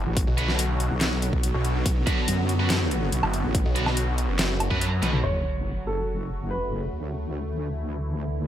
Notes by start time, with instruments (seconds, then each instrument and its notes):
Already playing: ambient pad D3 F#3 B3 F#4
0.06 wobble bass A1
0.17 kick, closed hi-hat
0.27 detuned saw bass B1
0.37 distorted electric guitar D4 F#4 B4, closed hi-hat
0.48 snare
0.59 closed hi-hat
0.80 closed hi-hat
0.91 wobble bass B1
1.01 snare, clap, closed hi-hat
1.22 closed hi-hat
1.33 wobble bass B1, kick
1.43 closed hi-hat
1.54 detuned saw bass B1
1.65 closed hi-hat
1.86 wobble bass B1, kick, closed hi-hat
2.07 distorted electric guitar D4 F#4 B4, kick, closed hi-hat
2.28 wobble bass F#2, closed hi-hat
2.49 closed hi-hat
2.60 distorted electric guitar D4 F#4 B4
2.70 snare, clap, closed hi-hat
2.91 closed hi-hat
3.12 wobble bass B1, closed hi-hat
3.23 detuned saw bass F#1, low woodblock
3.34 closed hi-hat
3.44 wobble bass A1
3.55 kick, closed hi-hat
3.65 detuned saw bass B1
3.76 distorted electric guitar D4 F#4 B4, closed hi-hat
3.86 snare, low woodblock
3.97 closed hi-hat
4.18 closed hi-hat
4.29 detuned saw bass F#1
4.39 snare, clap, closed hi-hat
4.60 closed hi-hat, low woodblock
4.71 detuned saw bass F#2, distorted electric guitar D4 F#4 B4, kick
4.81 closed hi-hat
5.02 detuned saw bass B1, distorted electric guitar D4 F#4 B4, closed hi-hat, high tom
5.13 detuned saw bass B1, mid tom
5.24 wobble bass F#1, ambient pad C#3 F#3 A3 F#4, grand piano C#5, crash, sub drop
5.87 grand piano A4
6.50 grand piano B4
6.93 wobble bass D2, ambient pad D3 E3 E4